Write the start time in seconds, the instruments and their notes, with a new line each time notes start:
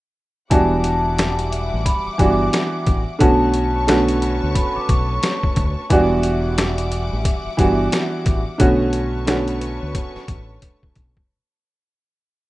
0.50 fingered electric bass E1, upright piano E3 G3 B3 D4 F#4, string section G3 E5 F#5 D6, vibraphone A5, kick, closed hi-hat
0.84 closed hi-hat
1.18 snare, closed hi-hat
1.39 closed hi-hat
1.52 closed hi-hat
1.74 fingered electric bass A1
1.85 vibraphone B5, kick, closed hi-hat
2.07 vibraphone D6, muted fingered electric bass stroke
2.18 fingered electric bass G1, upright piano E3 G3 B3 D4 F#4, vibraphone D6, kick, closed hi-hat
2.53 snare, closed hi-hat
2.87 fingered electric bass A1, kick, closed hi-hat
3.19 fingered electric bass B1, upright piano D3 A3 B3 C#4 F#4, string section B4 C#5 A5 C#6, vibraphone A5, kick, closed hi-hat
3.54 closed hi-hat
3.87 upright piano D3 A3 B3 C#4 F#4, snare, closed hi-hat
4.08 closed hi-hat
4.22 closed hi-hat
4.43 fingered electric bass D2
4.54 vibraphone B5, kick, closed hi-hat
4.76 vibraphone D6, muted fingered electric bass stroke
4.89 fingered electric bass B1, vibraphone C#6, kick, closed hi-hat
5.23 snare, closed hi-hat
5.43 kick
5.56 fingered electric bass D2, kick, closed hi-hat
5.90 fingered electric bass E1, upright piano E3 G3 B3 D4 F#4, string section G3 E5 F#5 D6, kick, closed hi-hat
6.23 closed hi-hat
6.58 snare, closed hi-hat
6.78 closed hi-hat
6.92 closed hi-hat
7.13 fingered electric bass A1
7.25 kick, closed hi-hat
7.47 muted fingered electric bass stroke
7.57 fingered electric bass G1, upright piano E3 G3 B3 D4 F#4, kick, closed hi-hat
7.92 snare, closed hi-hat
8.26 fingered electric bass A1, kick, closed hi-hat
8.58 fingered electric bass B1, upright piano D3 A3 B3 C#4 F#4, string section B4 C#5 A5 C#6, kick, closed hi-hat
8.93 closed hi-hat
9.26 upright piano D3 A3 B3 C#4 F#4, snare, closed hi-hat
9.48 closed hi-hat
9.61 closed hi-hat
9.83 fingered electric bass D2
9.95 kick, closed hi-hat
10.16 muted fingered electric bass stroke, snare
10.28 fingered electric bass A1, kick, closed hi-hat
10.62 kick, closed hi-hat
10.83 kick
10.95 fingered electric bass B1, kick, closed hi-hat
11.17 kick